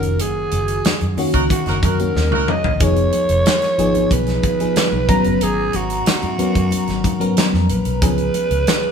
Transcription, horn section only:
1.33 D#4 F#4 A#4
1.66 D#4 F#4 A#4
1.82 D#4 F#4 A#4
2.31 D#4 F#4 A#4

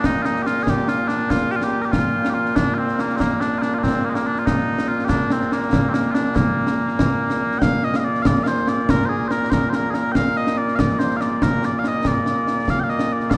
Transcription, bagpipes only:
Already playing: A#2 A#3
0.05 D#4
0.22 D#4 F4
0.43 G4
0.47 F4
0.63 G#4
0.69 G4
0.89 F4
1.08 D4
1.31 F4
1.51 G4
1.56 F4
1.64 G4
1.82 G4 A#4
1.92 F4
2.30 G4
2.34 F4
2.56 D4
2.74 C4 F4
3.00 A#3
3.17 A#3 C4
3.41 D4
3.59 D4 F4
3.75 F4
3.79 C4 D4
4.05 A#3
4.10 G#3
4.15 A#3
4.26 D4
4.39 F4
4.46 D#4
4.88 F4
5.05 G4
5.09 D4
5.32 C4
5.52 A#3
5.89 C4
5.94 A#3
6.11 D4 F4
6.36 A#3
7.59 G5
7.63 F5
7.84 D#5
7.96 D#5 F5
8.04 D5
8.22 F5
8.26 D5
8.43 F5
8.47 C5
8.69 D5
8.90 A#4
9.06 G#4 C5
9.28 A#4 C5
9.50 A#4 C5
9.70 C5
9.75 A#4
9.90 G#4
9.94 A#4
10.12 F5 G5
10.37 D#5
10.57 D5
10.75 D5 F5
10.99 C5
11.16 F5
11.21 D5
11.43 A#4
11.65 D5
11.79 F5
11.88 D#5
12.07 D5
12.70 F5
12.80 F5 G5
12.89 D#5
13.12 D5
13.30 D5 F5

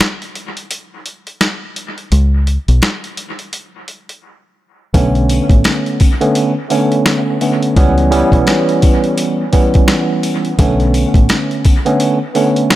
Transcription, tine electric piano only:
4.94 D3 A3 B3 C#4
6.21 D3 A3 B3 C#4
6.70 D3 A3 B3 C#4
7.41 D3 A3 B3 C#4
7.76 E3 G3 B3 C#4
8.11 E3 G3 B3 C#4
9.53 E3 G3 B3 C#4
10.59 D3 A3 B3 C#4
11.85 D3 A3 B3 C#4
12.35 D3 A3 B3 C#4

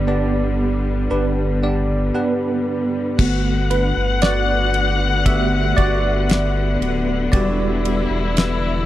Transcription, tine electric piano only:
Already playing: G2 B3 D4 G4 D5
0.07 B3 D4 G4 D5
1.10 B3 D4 G4 B4
1.62 B3 D4 G4 D5
2.14 B3 D4 G4 B4
3.18 A3 B3 F#4
3.71 D4 B4
4.22 F#4 D5
5.26 A3 B3 F#4 G4 E5
5.77 F#4 D5
7.32 G3 D4 F#4 G4 D5

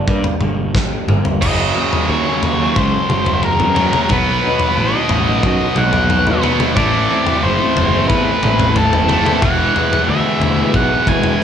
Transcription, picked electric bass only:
0.07 G2
0.41 G1
1.08 G1
1.43 F#1
2.10 D#2
2.42 D#2
2.76 C#2
3.09 F#1
3.60 F#2
4.10 B1
4.78 A1
5.09 A1
5.43 F#2
5.77 B1
6.27 B2
6.76 A1
7.44 F#1
7.76 F#1
8.10 E2
8.44 A1
8.92 F#1
9.42 E1
10.08 D2
10.40 D2
10.74 B1
11.07 E1

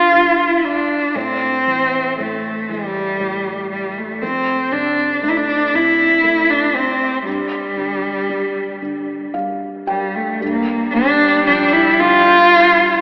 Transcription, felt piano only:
Already playing: G2 D3
0.12 G2
1.15 A2
1.67 E3
2.19 A2
2.69 E3
3.20 A2
4.22 F2
4.72 C3
5.23 A3
5.73 C3
6.24 A3
7.26 G2
7.77 D3
8.29 G3
8.82 D3
9.34 G3 F5
9.87 G5
10.41 G2
10.94 D3
11.47 F3
12.00 D3

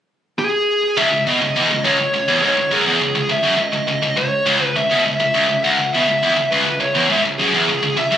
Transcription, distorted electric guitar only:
0.97 C#2
1.12 C#2
1.27 B2
1.42 C#2
1.56 E2
1.70 C#2
1.85 C#2
1.99 C#2
2.14 C#2
2.28 E2
2.42 G#2
2.57 C#2
2.71 F#2
2.86 E2
3.01 C#2
3.15 C#2
3.29 C#2
3.44 F#2
3.58 C#2
3.73 C#2
3.88 C#2
4.03 C#2
4.17 C#2
4.47 C#2
4.62 C#2
4.76 C#2
4.91 B2
5.06 C#2
5.20 C#2
5.34 C#2
5.49 C#2
5.64 C#2
5.79 C#2
5.94 B2
6.08 C#2
6.23 E2
6.36 C#2
6.52 C#2
6.66 C#2
6.80 C#2
6.95 E2
7.10 G#2
7.25 C#2
7.39 F#2
7.54 E2
7.69 C#2
7.83 C#2
7.97 C#2
8.12 F#2

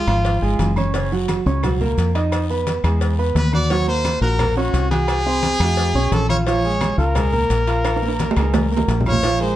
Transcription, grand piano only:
0.08 F3 F4 F5
0.42 G#3 G#4 G#5
0.77 C#4 C#5 C#6
0.95 C#3 C#4 C#5
1.12 F#3 F#4 F#5
1.46 C#4 C#5 C#6
1.63 F#3 F#4 F#5
1.81 A#3 A#4 A#5
2.15 D#4 D#5 D#6
2.50 B3 B4 B5
2.84 G#3 G#4 G#5
3.19 B3 B4 B5
3.53 F#4 F#5 F#6
3.71 F#3 F#4 F#5
3.88 A#3 A#4 A#5
4.23 F#4 F#5 F#6
4.40 A#3 A#4 A#5
4.57 C#4 C#5 C#6
4.91 F#4 F#5 F#6
5.26 C4 C5 C6
5.61 A3 F#4 F#5
5.95 C#4 C#5 C#6
6.29 F4 F5 F6
6.47 F3 F4 F5
6.64 G#3 G#4 G#5
6.98 F4 F5 F6
7.15 G#3 G#4 G#5
7.33 A#3 A#4 A#5
7.67 F4 F5 F6
8.02 A#3 A#4 A#5
8.36 G#3 G#4 G#5
8.72 A#3 A#4 A#5
9.07 F4 F5 F6
9.24 F3 F4 F5
9.40 G#3 G#4 A#4

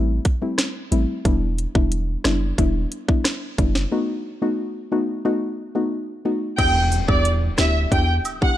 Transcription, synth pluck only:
Already playing: G3 A3 C4 E4
0.42 G3 A3 C4 E4
0.91 G3 A3 C4 E4
1.25 G3 B3 D4 E4
1.75 G3 B3 D4 E4
2.25 G3 B3 D4 E4
2.58 G3 B3 D4 E4
3.08 G3 B3 D4 E4
3.58 G3 B3 D4 E4
3.92 A3 B3 D#4 F#4
4.42 A3 B3 D#4 F#4
4.92 A3 B3 D#4 F#4
5.25 A3 B3 D#4 F#4
5.75 A3 B3 D#4 F#4
6.25 A3 B3 D#4 F#4
6.58 B3 D4 E4 G4
7.08 B3 D4 E4 G4
7.58 B3 D4 E4 G4
7.91 B3 D4 E4 G4
8.41 B3 D4 E4 G4

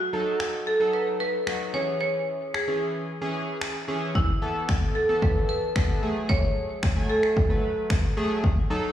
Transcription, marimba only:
Already playing: F#4
0.67 A4
0.93 B4
1.20 B4
1.74 C#5
2.01 C#5
2.55 G#4
4.15 E4
4.95 A4
5.22 B4
5.49 B4
6.29 C#5
7.10 A4

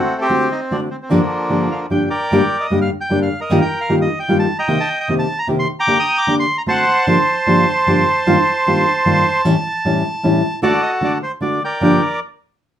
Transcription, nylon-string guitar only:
0.29 D3 A3 C4 F#4
0.71 D3 A3 C4 F#4
1.10 G2 D3 F3 A#3 D4 G4
1.49 G2 D3 F3 A#3 D4 G4
1.90 G2 D3 F3 A#3 D4 G4
2.31 G2 D3 G3 A#3 D4 G4
2.70 G2 D3 G3 A#3 D4 G4
3.09 G2 D3 G3 A#3 D4 G4
3.50 G2 D#3 G3 A#3 F4 G4
3.89 G2 D#3 G3 A#3 F4 G4
4.28 G2 D#3 G3 A#3 F4 G4
4.68 C3 D#3 A#3 C4 G4
5.08 C3 D#3 A#3 C4 G4
5.47 C3 D#3 A#3 C4 G4
5.87 D3 A#3 D4 G4
6.27 D3 A#3 D4 G4
6.66 D3 A3 C4 F#4
7.07 G2 D3 F3 A#3 D4 G4
7.46 G2 D3 F3 A#3 D4 G4
7.87 G2 D3 F3 A#3 D4 G4
8.26 G2 D#3 G3 A#3 F4 G4
8.67 G2 D#3 G3 A#3 F4 G4
9.05 G2 D#3 G3 A#3 F4 G4
9.45 A2 E3 G3 C#4 E4
9.85 A2 E3 G3 C#4 E4
10.23 A2 E3 G3 C#4 E4
10.62 D3 A3 D4 F#4
11.01 D3 A3 D4 F#4
11.41 D3 A3 D4 F#4
11.80 G2 D3 F3 A#3 D4 G4

